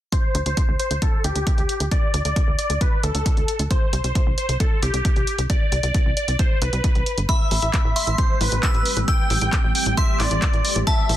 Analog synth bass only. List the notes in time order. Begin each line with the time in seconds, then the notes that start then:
0.35 D2
0.46 D2
0.68 D2
0.91 D2
1.24 D2
1.36 D2
1.58 D2
1.80 D2
2.14 D2
2.25 D2
2.47 D2
2.70 D2
3.03 D2
3.15 D2
3.37 D2
3.59 D2
3.93 C2
4.04 C2
4.27 C2
4.49 C2
4.82 C2
4.94 C2
5.16 C2
5.38 C2
5.72 C2
5.83 C2
6.06 C2
6.28 C2
6.62 C2
6.73 C2
6.95 C2
7.18 G1
7.51 A1
7.62 A1
7.85 A1
8.07 A1
8.41 A1
8.52 A1
8.74 A1
8.97 A1
9.30 A1
9.42 A1
9.64 A1
9.86 A1
10.20 A1
10.31 A1
10.53 A1
10.76 A1
11.09 A1